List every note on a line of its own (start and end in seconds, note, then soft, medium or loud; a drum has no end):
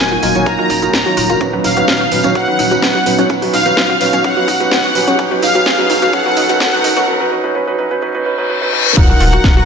0.00 0.16 D#1 medium
0.00 7.04 D#3 medium
0.00 0.11 F#3 medium
0.00 7.04 F#3 medium
0.00 1.37 A#3 medium
0.00 0.11 D#4 medium
0.00 1.37 D#4 medium
0.00 0.11 F4 medium
0.00 7.04 F#4 medium
0.00 0.11 A#4 loud
0.00 0.49 G#5 loud
0.00 riser medium
0.11 0.19 F4 medium
0.23 0.32 D#1 loud
0.23 0.33 F#3 medium
0.23 0.33 D#4 medium
0.23 0.33 F4 medium
0.23 0.33 A#4 medium
0.23 0.35 D#5 medium
0.23 open hi-hat loud
0.23 tambourine loud
0.35 0.43 D#1 medium
0.35 0.45 F#3 medium
0.35 0.45 D#4 medium
0.35 0.45 F4 medium
0.35 0.45 C#5 loud
0.35 closed hi-hat medium
0.35 tambourine medium
0.46 0.55 D#1 loud
0.46 0.57 F#3 medium
0.46 0.57 D#4 medium
0.46 0.57 F4 medium
0.46 0.57 A#4 medium
0.46 0.90 A#5 loud
0.46 kick loud
0.46 closed hi-hat soft
0.46 tambourine soft
0.59 0.76 F#3 medium
0.59 0.76 D#4 medium
0.59 0.66 F4 medium
0.59 0.76 F4 medium
0.59 0.76 A#4 medium
0.70 0.87 D#1 medium
0.70 0.78 D#4 medium
0.70 kick medium
0.70 open hi-hat loud
0.70 tambourine medium
0.82 0.93 F#3 medium
0.82 0.93 D#4 medium
0.82 0.93 F4 medium
0.82 0.93 A#4 medium
0.82 closed hi-hat medium
0.82 tambourine medium
0.93 1.03 D#1 medium
0.93 1.38 A#5 loud
0.93 kick loud
0.93 snare loud
0.93 closed hi-hat soft
0.93 tambourine soft
1.06 1.24 F#3 medium
1.06 1.24 D#4 medium
1.06 1.24 F4 medium
1.06 1.14 F#4 medium
1.06 1.24 C#5 medium
1.17 1.35 D#1 loud
1.17 1.22 F4 medium
1.17 open hi-hat loud
1.17 tambourine loud
1.30 1.39 F#3 medium
1.30 1.39 D#4 medium
1.30 1.34 F4 medium
1.30 1.39 F4 medium
1.30 1.39 A#4 medium
1.30 closed hi-hat medium
1.30 tambourine medium
1.41 1.58 D#1 loud
1.41 1.50 F#3 medium
1.41 7.04 B3 medium
1.41 1.49 C#4 medium
1.41 5.15 C#4 medium
1.41 1.50 C#4 medium
1.41 1.50 D#4 medium
1.41 1.50 B4 medium
1.41 kick loud
1.41 closed hi-hat soft
1.53 1.71 F#3 medium
1.53 1.71 C#4 medium
1.53 1.71 D#4 medium
1.53 1.58 F#4 medium
1.53 1.71 B4 medium
1.64 1.82 D#1 medium
1.64 1.70 D#4 medium
1.64 2.31 F5 loud
1.64 open hi-hat loud
1.64 tambourine loud
1.77 1.86 F#3 medium
1.77 1.86 C#4 medium
1.77 1.86 D#4 medium
1.77 1.88 F#4 medium
1.77 1.86 B4 medium
1.77 closed hi-hat medium
1.77 tambourine soft
1.88 2.05 D#1 medium
1.88 1.96 B4 medium
1.88 kick loud
1.88 snare loud
1.88 closed hi-hat soft
1.88 tambourine soft
2.01 2.11 F#4 medium
2.11 2.21 D#1 loud
2.11 2.22 F#3 medium
2.11 2.22 C#4 medium
2.11 2.22 D#4 medium
2.11 2.22 B4 medium
2.11 open hi-hat loud
2.11 tambourine medium
2.24 2.32 D#1 medium
2.24 2.34 F#3 medium
2.24 2.34 C#4 medium
2.24 2.29 C#4 medium
2.24 2.34 D#4 medium
2.24 2.34 C#5 medium
2.24 closed hi-hat medium
2.24 tambourine medium
2.35 2.44 D#1 loud
2.35 2.45 F#3 medium
2.35 2.45 C#4 medium
2.35 2.44 C#4 medium
2.35 2.45 D#4 medium
2.35 2.45 B4 medium
2.35 2.79 F#5 loud
2.35 kick loud
2.35 closed hi-hat soft
2.35 tambourine soft
2.48 2.65 F#3 medium
2.48 2.65 C#4 medium
2.48 2.65 D#4 medium
2.48 2.52 F#4 medium
2.48 2.65 B4 medium
2.59 2.76 D#1 medium
2.59 2.64 D#4 medium
2.59 open hi-hat loud
2.59 tambourine medium
2.71 2.81 F#3 medium
2.71 2.81 C#4 medium
2.71 2.81 D#4 medium
2.71 2.82 F#4 medium
2.71 2.81 B4 medium
2.71 closed hi-hat medium
2.71 tambourine medium
2.82 2.92 D#1 medium
2.82 2.94 F#3 medium
2.82 2.94 C#4 medium
2.82 2.94 D#4 medium
2.82 2.91 B4 medium
2.82 2.94 B4 loud
2.82 3.27 F#5 loud
2.82 kick loud
2.82 snare loud
2.82 closed hi-hat soft
2.82 tambourine soft
2.95 3.06 F#4 medium
3.06 3.24 D#1 loud
3.06 3.17 F#3 medium
3.06 3.17 C#4 medium
3.06 3.17 D#4 medium
3.06 3.17 B4 medium
3.06 open hi-hat loud
3.06 tambourine medium
3.18 3.28 F#3 medium
3.18 3.23 C#4 medium
3.18 3.28 C#4 medium
3.18 3.28 D#4 medium
3.18 3.28 C#5 loud
3.18 closed hi-hat medium
3.18 tambourine medium
3.29 3.47 D#1 loud
3.29 3.39 F#3 medium
3.29 3.38 C#4 medium
3.29 3.39 C#4 medium
3.29 3.39 D#4 medium
3.29 3.39 B4 medium
3.29 kick loud
3.29 closed hi-hat soft
3.29 tambourine soft
3.42 3.60 F#3 medium
3.42 3.60 C#4 medium
3.42 3.60 D#4 medium
3.42 3.47 F#4 medium
3.42 3.60 B4 loud
3.42 open hi-hat medium
3.53 3.71 D#1 medium
3.53 3.58 D#4 medium
3.53 4.27 F5 loud
3.53 open hi-hat loud
3.53 tambourine medium
3.65 3.75 F#3 medium
3.65 3.75 C#4 medium
3.65 3.75 D#4 medium
3.65 3.77 F#4 medium
3.65 3.75 B4 loud
3.65 closed hi-hat medium
3.65 tambourine medium
3.77 3.94 D#1 medium
3.77 3.89 F#3 medium
3.77 3.89 C#4 medium
3.77 3.89 D#4 medium
3.77 3.85 B4 medium
3.77 3.89 B4 loud
3.77 kick loud
3.77 snare loud
3.77 closed hi-hat medium
3.77 tambourine soft
3.89 4.00 F#4 medium
4.01 4.10 D#1 loud
4.01 4.11 F#3 medium
4.01 4.11 C#4 medium
4.01 4.11 D#4 medium
4.01 4.11 B4 medium
4.01 open hi-hat loud
4.01 tambourine medium
4.13 4.21 D#1 medium
4.13 4.23 F#3 medium
4.13 4.18 C#4 medium
4.13 4.23 C#4 medium
4.13 4.23 D#4 medium
4.13 4.23 C#5 loud
4.13 closed hi-hat medium
4.13 tambourine medium
4.24 4.33 D#1 loud
4.24 4.34 F#3 medium
4.24 4.33 C#4 medium
4.24 4.34 C#4 medium
4.24 4.34 D#4 medium
4.24 4.34 B4 loud
4.24 4.71 F#5 loud
4.24 kick loud
4.24 closed hi-hat medium
4.24 tambourine soft
4.37 4.54 F#3 medium
4.37 4.54 C#4 medium
4.37 4.54 D#4 medium
4.37 4.41 F#4 medium
4.37 4.54 B4 loud
4.48 4.65 D#1 medium
4.48 4.53 D#4 medium
4.48 kick medium
4.48 open hi-hat loud
4.48 tambourine medium
4.60 4.70 F#3 medium
4.60 4.70 C#4 medium
4.60 4.70 D#4 medium
4.60 4.71 F#4 medium
4.60 4.70 B4 loud
4.60 closed hi-hat medium
4.60 tambourine medium
4.71 4.81 D#1 medium
4.71 4.83 F#3 medium
4.71 4.83 C#4 medium
4.71 4.83 D#4 medium
4.71 4.80 B4 medium
4.71 4.83 B4 loud
4.71 5.16 F#5 loud
4.71 kick loud
4.71 snare loud
4.71 closed hi-hat medium
4.71 tambourine soft
4.84 4.95 F#4 medium
4.95 5.13 D#1 loud
4.95 5.06 F#3 medium
4.95 5.06 C#4 medium
4.95 5.06 D#4 medium
4.95 5.06 B4 medium
4.95 open hi-hat loud
4.95 tambourine medium
5.08 5.17 F#3 medium
5.08 5.12 C#4 medium
5.08 5.17 C#4 medium
5.08 5.17 D#4 medium
5.08 5.17 C#5 loud
5.08 closed hi-hat medium
5.08 tambourine soft
5.19 5.36 D#1 loud
5.19 5.28 F#3 medium
5.19 5.27 C#4 medium
5.19 5.28 C#4 medium
5.19 5.28 D#4 medium
5.19 7.06 D#4 medium
5.19 5.28 B4 medium
5.19 kick loud
5.19 closed hi-hat medium
5.19 tambourine soft
5.31 5.49 F#3 medium
5.31 5.49 C#4 medium
5.31 5.49 D#4 medium
5.31 5.36 F#4 medium
5.31 5.49 B4 loud
5.42 5.60 D#1 medium
5.42 5.47 D#4 medium
5.42 6.16 F5 loud
5.42 open hi-hat loud
5.42 tambourine medium
5.54 5.64 F#3 medium
5.54 5.64 C#4 medium
5.54 5.64 D#4 medium
5.54 5.64 F#4 medium
5.54 5.64 B4 loud
5.54 closed hi-hat medium
5.54 tambourine medium
5.66 5.83 D#1 medium
5.66 5.76 F#3 medium
5.66 5.74 C#4 medium
5.66 5.76 D#4 medium
5.66 kick loud
5.66 snare loud
5.66 closed hi-hat medium
5.66 tambourine soft
5.78 5.96 F#3 medium
5.78 5.96 C#4 medium
5.78 5.96 D#4 medium
5.78 5.83 F#4 medium
5.78 5.96 B4 loud
5.90 5.99 D#1 loud
5.90 5.95 D#4 medium
5.90 open hi-hat loud
5.90 tambourine medium
6.02 6.10 D#1 medium
6.02 6.12 F#3 medium
6.02 6.12 C#4 medium
6.02 6.12 D#4 medium
6.02 6.12 F#4 medium
6.02 6.12 B4 medium
6.02 closed hi-hat medium
6.02 tambourine medium
6.13 6.22 D#1 loud
6.13 6.23 F#3 loud
6.13 6.23 C#4 medium
6.13 6.22 C#4 medium
6.13 6.23 D#4 medium
6.13 6.23 B4 loud
6.13 6.57 F#5 loud
6.13 kick loud
6.13 closed hi-hat medium
6.13 tambourine soft
6.26 6.43 F#3 medium
6.26 6.43 C#4 medium
6.26 6.43 D#4 medium
6.26 6.30 F#4 medium
6.26 6.43 B4 loud
6.36 6.54 D#1 medium
6.36 6.42 D#4 medium
6.36 open hi-hat loud
6.36 tambourine medium
6.49 6.59 F#3 medium
6.49 6.59 C#4 medium
6.49 6.59 D#4 medium
6.49 6.59 F#4 medium
6.49 6.59 B4 loud
6.49 closed hi-hat medium
6.49 tambourine medium
6.60 6.70 D#1 medium
6.60 6.70 F#3 medium
6.60 6.70 C#4 medium
6.60 6.69 C#4 medium
6.60 6.70 D#4 medium
6.60 7.05 F#5 loud
6.60 kick loud
6.60 snare loud
6.60 closed hi-hat medium
6.60 tambourine soft
6.73 6.90 F#3 medium
6.73 6.90 C#4 medium
6.73 6.90 D#4 medium
6.73 6.78 F#4 medium
6.73 6.90 B4 loud
6.84 7.02 D#1 loud
6.84 6.89 D#4 medium
6.84 open hi-hat loud
6.84 tambourine medium
6.97 7.06 F#3 medium
6.97 7.06 C#4 medium
6.97 7.06 D#4 medium
6.97 7.06 F#4 medium
6.97 7.06 B4 loud
6.97 closed hi-hat medium
6.97 tambourine medium
7.08 7.17 F#3 medium
7.08 7.17 C#4 medium
7.08 7.17 D#4 medium
7.08 7.17 B4 loud
7.20 7.30 F#3 medium
7.20 7.30 C#4 medium
7.20 7.30 D#4 medium
7.20 7.30 B4 loud
7.31 7.41 F#3 medium
7.31 7.41 C#4 medium
7.31 7.41 D#4 medium
7.31 7.41 B4 loud
7.44 7.53 F#3 loud
7.44 7.53 C#4 medium
7.44 7.53 D#4 medium
7.44 7.53 B4 loud
7.55 7.65 F#3 medium
7.55 7.64 C#4 medium
7.55 7.64 D#4 medium
7.55 7.64 B4 loud
7.67 7.77 F#3 medium
7.67 7.77 C#4 medium
7.67 7.77 D#4 medium
7.67 7.77 B4 loud
7.79 7.88 F#3 medium
7.79 7.88 C#4 medium
7.79 7.88 D#4 medium
7.79 7.88 B4 loud
7.91 8.00 F#3 medium
7.91 8.00 C#4 medium
7.91 8.00 D#4 medium
7.91 8.00 B4 loud
8.02 8.12 F#3 loud
8.02 8.12 C#4 medium
8.02 8.12 D#4 medium
8.02 8.12 B4 loud
8.02 reverse cymbal medium
8.15 8.24 F#3 medium
8.15 8.24 C#4 medium
8.15 8.24 D#4 medium
8.15 8.24 B4 loud
8.26 8.35 F#3 medium
8.26 8.35 C#4 medium
8.26 8.35 D#4 medium
8.26 8.35 B4 loud
8.38 8.48 F#3 medium
8.38 8.48 C#4 medium
8.38 8.48 D#4 medium
8.38 8.48 B4 loud
8.49 8.59 F#3 medium
8.49 8.59 C#4 medium
8.49 8.59 D#4 medium
8.49 8.59 B4 loud
8.62 8.71 F#3 medium
8.62 8.71 C#4 medium
8.62 8.71 D#4 medium
8.62 8.71 B4 loud
8.73 8.83 F#3 medium
8.73 8.83 C#4 medium
8.73 8.83 D#4 medium
8.73 8.83 B4 loud
8.86 8.95 F#3 medium
8.86 8.95 C#4 medium
8.86 8.95 D#4 medium
8.86 8.95 B4 loud
8.97 9.14 D#1 loud
8.97 9.65 D#3 medium
8.97 9.06 F#3 medium
8.97 9.65 F#3 medium
8.97 9.65 A#3 medium
8.97 9.06 D#4 medium
8.97 9.05 D#4 medium
8.97 9.65 D#4 medium
8.97 9.06 F4 medium
8.97 9.06 A#4 medium
8.97 9.65 F#5 loud
8.97 9.65 A#5 medium
8.97 kick loud
8.97 closed hi-hat medium
8.97 crash loud
8.97 sub drop medium
9.09 9.27 F#3 medium
9.09 9.27 D#4 medium
9.09 9.27 F4 medium
9.09 9.14 F#4 medium
9.09 9.27 A#4 loud
9.20 9.38 D#1 medium
9.20 9.25 F4 medium
9.20 open hi-hat loud
9.33 9.42 F#3 medium
9.33 9.42 D#4 medium
9.33 9.42 F4 medium
9.33 9.43 F#4 medium
9.33 9.42 A#4 loud
9.33 closed hi-hat medium
9.44 9.61 D#1 loud
9.44 9.56 F#3 medium
9.44 9.56 D#4 medium
9.44 9.56 F4 medium
9.44 9.56 A#4 loud
9.44 9.52 A#4 medium
9.44 kick loud
9.44 snare loud
9.44 closed hi-hat medium
9.56 9.65 F#4 medium